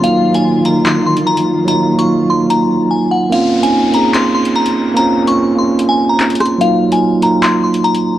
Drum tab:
HH |x-----x-----x---x-----x-x-x-----|x-----x---------x---------------|x-----x-----x---x-----x-x-x-----|x-----x---------x-------x-xxxx--|
CP |----------------x---------------|--------------------------------|----------------x---------------|------------------------x-------|
SD |--------------------------------|--------------------------------|--------------------------------|----------------------------r---|

HH |x-----x-----x---x-----x-x-x-----|
CP |----------------x---------------|
SD |--------------------------------|